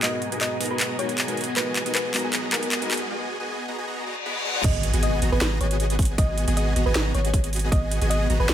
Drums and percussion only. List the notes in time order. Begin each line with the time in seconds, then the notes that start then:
0.03 clap, closed hi-hat
0.22 closed hi-hat
0.32 closed hi-hat
0.41 clap, closed hi-hat
0.61 open hi-hat
0.66 closed hi-hat
0.80 clap, closed hi-hat
0.99 closed hi-hat
1.09 closed hi-hat
1.18 clap, closed hi-hat
1.28 closed hi-hat
1.37 closed hi-hat
1.41 closed hi-hat
1.44 closed hi-hat
1.57 clap, closed hi-hat
1.76 clap, closed hi-hat
1.86 closed hi-hat
1.95 clap, closed hi-hat
2.14 clap, open hi-hat
2.19 closed hi-hat
2.33 clap, closed hi-hat
2.53 clap, closed hi-hat
2.63 closed hi-hat
2.72 clap, closed hi-hat
2.82 closed hi-hat
2.91 clap, closed hi-hat
2.94 closed hi-hat
2.97 closed hi-hat
4.26 high tom
4.36 high tom
4.55 mid tom
4.64 kick, closed hi-hat, crash
4.83 closed hi-hat
4.93 closed hi-hat
5.03 closed hi-hat
5.22 closed hi-hat
5.41 snare, closed hi-hat
5.61 closed hi-hat
5.71 closed hi-hat
5.80 closed hi-hat
5.90 closed hi-hat
5.99 kick, closed hi-hat, open hi-hat
6.05 closed hi-hat
6.18 kick, closed hi-hat
6.38 closed hi-hat
6.48 closed hi-hat
6.57 closed hi-hat
6.76 closed hi-hat
6.95 snare, closed hi-hat
7.14 closed hi-hat
7.25 closed hi-hat
7.34 kick, closed hi-hat
7.44 closed hi-hat
7.53 closed hi-hat, open hi-hat
7.59 closed hi-hat
7.72 kick, closed hi-hat
7.91 closed hi-hat
8.02 closed hi-hat
8.11 closed hi-hat
8.30 closed hi-hat
8.49 snare, closed hi-hat